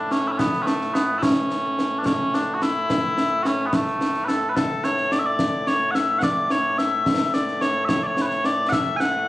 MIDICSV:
0, 0, Header, 1, 3, 480
1, 0, Start_track
1, 0, Key_signature, 3, "major"
1, 0, Tempo, 555556
1, 338, Time_signature, 6, 3, 24, 8
1, 8021, End_track
2, 0, Start_track
2, 0, Title_t, "Bagpipes"
2, 0, Program_c, 0, 109
2, 0, Note_on_c, 0, 45, 89
2, 0, Note_on_c, 0, 57, 89
2, 0, Note_on_c, 0, 62, 92
2, 103, Note_off_c, 0, 62, 0
2, 103, Note_on_c, 0, 61, 95
2, 238, Note_off_c, 0, 61, 0
2, 238, Note_on_c, 0, 64, 72
2, 272, Note_off_c, 0, 64, 0
2, 272, Note_on_c, 0, 61, 72
2, 332, Note_off_c, 0, 61, 0
2, 332, Note_on_c, 0, 59, 93
2, 540, Note_off_c, 0, 59, 0
2, 540, Note_on_c, 0, 61, 84
2, 573, Note_off_c, 0, 57, 0
2, 573, Note_off_c, 0, 61, 0
2, 573, Note_on_c, 0, 57, 84
2, 813, Note_off_c, 0, 57, 0
2, 813, Note_on_c, 0, 59, 82
2, 1022, Note_off_c, 0, 59, 0
2, 1022, Note_on_c, 0, 64, 95
2, 1059, Note_off_c, 0, 64, 0
2, 1059, Note_on_c, 0, 61, 95
2, 1719, Note_off_c, 0, 61, 0
2, 1719, Note_on_c, 0, 62, 75
2, 1781, Note_off_c, 0, 62, 0
2, 1781, Note_on_c, 0, 61, 94
2, 2028, Note_off_c, 0, 61, 0
2, 2028, Note_on_c, 0, 62, 92
2, 2196, Note_off_c, 0, 62, 0
2, 2196, Note_on_c, 0, 66, 72
2, 2269, Note_off_c, 0, 66, 0
2, 2269, Note_on_c, 0, 64, 97
2, 2963, Note_off_c, 0, 64, 0
2, 2963, Note_on_c, 0, 66, 85
2, 2994, Note_off_c, 0, 66, 0
2, 2994, Note_on_c, 0, 61, 85
2, 3163, Note_off_c, 0, 61, 0
2, 3163, Note_on_c, 0, 59, 62
2, 3235, Note_off_c, 0, 59, 0
2, 3235, Note_on_c, 0, 57, 72
2, 3670, Note_off_c, 0, 57, 0
2, 3670, Note_on_c, 0, 71, 90
2, 3699, Note_off_c, 0, 71, 0
2, 3699, Note_on_c, 0, 69, 90
2, 3884, Note_off_c, 0, 69, 0
2, 3884, Note_on_c, 0, 71, 66
2, 3941, Note_off_c, 0, 71, 0
2, 3941, Note_on_c, 0, 69, 90
2, 4183, Note_off_c, 0, 69, 0
2, 4183, Note_on_c, 0, 73, 88
2, 4422, Note_off_c, 0, 73, 0
2, 4422, Note_on_c, 0, 74, 95
2, 4485, Note_off_c, 0, 74, 0
2, 4485, Note_on_c, 0, 76, 83
2, 4543, Note_off_c, 0, 76, 0
2, 4543, Note_on_c, 0, 74, 100
2, 4901, Note_off_c, 0, 74, 0
2, 4901, Note_on_c, 0, 73, 88
2, 5106, Note_off_c, 0, 73, 0
2, 5106, Note_on_c, 0, 78, 96
2, 5141, Note_off_c, 0, 78, 0
2, 5141, Note_on_c, 0, 76, 96
2, 5346, Note_off_c, 0, 76, 0
2, 5346, Note_on_c, 0, 78, 101
2, 5384, Note_off_c, 0, 78, 0
2, 5384, Note_on_c, 0, 74, 101
2, 5623, Note_off_c, 0, 74, 0
2, 5623, Note_on_c, 0, 73, 89
2, 5859, Note_off_c, 0, 73, 0
2, 5859, Note_on_c, 0, 76, 102
2, 6340, Note_off_c, 0, 76, 0
2, 6340, Note_on_c, 0, 74, 98
2, 6577, Note_off_c, 0, 74, 0
2, 6577, Note_on_c, 0, 73, 101
2, 6780, Note_off_c, 0, 73, 0
2, 6780, Note_on_c, 0, 76, 94
2, 6815, Note_off_c, 0, 76, 0
2, 6815, Note_on_c, 0, 73, 94
2, 6939, Note_off_c, 0, 73, 0
2, 6939, Note_on_c, 0, 74, 63
2, 6968, Note_off_c, 0, 74, 0
2, 6968, Note_on_c, 0, 73, 90
2, 7097, Note_off_c, 0, 73, 0
2, 7097, Note_on_c, 0, 71, 68
2, 7137, Note_off_c, 0, 71, 0
2, 7137, Note_on_c, 0, 73, 93
2, 7302, Note_off_c, 0, 73, 0
2, 7302, Note_on_c, 0, 74, 102
2, 7509, Note_off_c, 0, 74, 0
2, 7509, Note_on_c, 0, 78, 111
2, 7541, Note_off_c, 0, 78, 0
2, 7541, Note_on_c, 0, 76, 111
2, 7746, Note_off_c, 0, 76, 0
2, 7746, Note_on_c, 0, 80, 109
2, 7778, Note_off_c, 0, 80, 0
2, 7778, Note_on_c, 0, 78, 109
2, 8021, Note_off_c, 0, 45, 0
2, 8021, Note_off_c, 0, 78, 0
2, 8021, End_track
3, 0, Start_track
3, 0, Title_t, "Drums"
3, 98, Note_on_c, 9, 38, 79
3, 184, Note_off_c, 9, 38, 0
3, 339, Note_on_c, 9, 35, 69
3, 339, Note_on_c, 9, 38, 107
3, 426, Note_off_c, 9, 35, 0
3, 426, Note_off_c, 9, 38, 0
3, 460, Note_on_c, 9, 38, 29
3, 546, Note_off_c, 9, 38, 0
3, 578, Note_on_c, 9, 38, 87
3, 665, Note_off_c, 9, 38, 0
3, 704, Note_on_c, 9, 38, 32
3, 790, Note_off_c, 9, 38, 0
3, 821, Note_on_c, 9, 38, 90
3, 907, Note_off_c, 9, 38, 0
3, 1059, Note_on_c, 9, 35, 64
3, 1059, Note_on_c, 9, 38, 103
3, 1145, Note_off_c, 9, 35, 0
3, 1145, Note_off_c, 9, 38, 0
3, 1302, Note_on_c, 9, 38, 83
3, 1388, Note_off_c, 9, 38, 0
3, 1544, Note_on_c, 9, 38, 82
3, 1630, Note_off_c, 9, 38, 0
3, 1778, Note_on_c, 9, 35, 66
3, 1778, Note_on_c, 9, 38, 104
3, 1865, Note_off_c, 9, 35, 0
3, 1865, Note_off_c, 9, 38, 0
3, 2023, Note_on_c, 9, 38, 80
3, 2109, Note_off_c, 9, 38, 0
3, 2262, Note_on_c, 9, 38, 84
3, 2349, Note_off_c, 9, 38, 0
3, 2505, Note_on_c, 9, 35, 58
3, 2505, Note_on_c, 9, 38, 97
3, 2592, Note_off_c, 9, 35, 0
3, 2592, Note_off_c, 9, 38, 0
3, 2744, Note_on_c, 9, 38, 77
3, 2831, Note_off_c, 9, 38, 0
3, 2983, Note_on_c, 9, 38, 73
3, 3069, Note_off_c, 9, 38, 0
3, 3221, Note_on_c, 9, 35, 65
3, 3221, Note_on_c, 9, 38, 102
3, 3308, Note_off_c, 9, 35, 0
3, 3308, Note_off_c, 9, 38, 0
3, 3343, Note_on_c, 9, 38, 27
3, 3429, Note_off_c, 9, 38, 0
3, 3465, Note_on_c, 9, 38, 76
3, 3551, Note_off_c, 9, 38, 0
3, 3580, Note_on_c, 9, 38, 30
3, 3666, Note_off_c, 9, 38, 0
3, 3702, Note_on_c, 9, 38, 80
3, 3789, Note_off_c, 9, 38, 0
3, 3945, Note_on_c, 9, 35, 60
3, 3945, Note_on_c, 9, 38, 99
3, 4031, Note_off_c, 9, 35, 0
3, 4031, Note_off_c, 9, 38, 0
3, 4181, Note_on_c, 9, 38, 75
3, 4267, Note_off_c, 9, 38, 0
3, 4297, Note_on_c, 9, 38, 31
3, 4383, Note_off_c, 9, 38, 0
3, 4421, Note_on_c, 9, 38, 73
3, 4508, Note_off_c, 9, 38, 0
3, 4657, Note_on_c, 9, 35, 56
3, 4657, Note_on_c, 9, 38, 87
3, 4743, Note_off_c, 9, 35, 0
3, 4743, Note_off_c, 9, 38, 0
3, 4898, Note_on_c, 9, 38, 74
3, 4985, Note_off_c, 9, 38, 0
3, 5140, Note_on_c, 9, 38, 75
3, 5226, Note_off_c, 9, 38, 0
3, 5379, Note_on_c, 9, 35, 52
3, 5379, Note_on_c, 9, 38, 99
3, 5465, Note_off_c, 9, 35, 0
3, 5465, Note_off_c, 9, 38, 0
3, 5620, Note_on_c, 9, 38, 79
3, 5706, Note_off_c, 9, 38, 0
3, 5863, Note_on_c, 9, 38, 75
3, 5950, Note_off_c, 9, 38, 0
3, 6102, Note_on_c, 9, 35, 65
3, 6102, Note_on_c, 9, 38, 103
3, 6188, Note_off_c, 9, 35, 0
3, 6188, Note_off_c, 9, 38, 0
3, 6225, Note_on_c, 9, 38, 31
3, 6311, Note_off_c, 9, 38, 0
3, 6339, Note_on_c, 9, 38, 82
3, 6426, Note_off_c, 9, 38, 0
3, 6461, Note_on_c, 9, 38, 30
3, 6548, Note_off_c, 9, 38, 0
3, 6578, Note_on_c, 9, 38, 81
3, 6665, Note_off_c, 9, 38, 0
3, 6815, Note_on_c, 9, 35, 58
3, 6815, Note_on_c, 9, 38, 100
3, 6902, Note_off_c, 9, 35, 0
3, 6902, Note_off_c, 9, 38, 0
3, 7058, Note_on_c, 9, 38, 76
3, 7144, Note_off_c, 9, 38, 0
3, 7177, Note_on_c, 9, 38, 31
3, 7264, Note_off_c, 9, 38, 0
3, 7297, Note_on_c, 9, 38, 73
3, 7383, Note_off_c, 9, 38, 0
3, 7535, Note_on_c, 9, 35, 60
3, 7535, Note_on_c, 9, 38, 96
3, 7622, Note_off_c, 9, 35, 0
3, 7622, Note_off_c, 9, 38, 0
3, 7778, Note_on_c, 9, 38, 71
3, 7864, Note_off_c, 9, 38, 0
3, 8021, End_track
0, 0, End_of_file